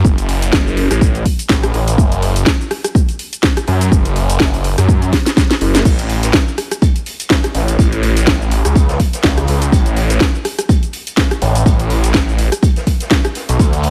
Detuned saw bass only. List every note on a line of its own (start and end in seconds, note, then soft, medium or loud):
0.05 0.51 F#1 medium
0.53 0.89 F#1 medium
0.91 1.24 A1 loud
1.50 1.72 A1 loud
1.74 1.97 A1 medium
1.98 2.45 F#1 loud
3.68 3.90 F#2 loud
3.92 4.38 F#1 loud
4.40 4.76 F#1 medium
4.78 5.11 F#2 loud
5.61 5.84 F#1 loud
5.85 6.32 A1 loud
7.55 7.77 A1 medium
7.79 8.26 A1 loud
8.27 8.63 A1 medium
8.65 8.98 C#2 loud
9.24 9.46 C#2 medium
9.48 9.71 C#2 loud
9.72 10.19 A1 loud
11.42 11.64 A1 loud
11.66 12.13 A1 medium
12.14 12.50 A1 medium
13.49 13.58 B1 loud
13.59 13.90 D2 loud